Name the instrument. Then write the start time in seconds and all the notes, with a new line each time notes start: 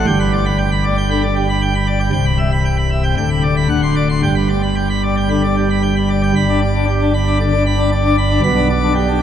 pipe organ
0.07 G1 G2 G5
0.20 B5
0.33 D5
0.46 B5
0.58 G5
0.72 B5
0.84 D5
0.97 G5
1.10 D3 B5
1.23 D5
1.36 G4
1.49 B5
1.62 G5
1.75 B5
1.87 D5
2.00 G5
2.12 C1 C2 G5
2.25 B5
2.38 E5
2.52 B5
2.65 G5
2.78 B5
2.91 E5
3.04 G5
3.17 D1 D2 G5
3.30 B5
3.43 D5
3.57 B5
3.69 D1 D2 F#5
3.82 C6
3.96 D5
4.09 C6
4.23 G1 G2 G5
4.36 B5
4.49 D5
4.63 B5
4.76 G5
4.90 B5
5.03 D5
5.17 G5
5.30 D3 B5
5.43 D5
5.57 G4
5.70 B5
5.83 G5
5.96 B5
6.10 D5
6.23 G5
6.35 G1 G2 B5
6.49 D4
6.62 D5
6.75 D4
6.88 G4
7.01 D4
7.14 B5
7.27 D4
7.40 D3 D5
7.53 D4
7.66 B5
7.79 D4
7.92 D5
8.05 D4
8.18 B5
8.31 D4
8.43 B1 B2 B5
8.57 D4
8.70 D5
8.83 D4
8.95 G4
9.08 D4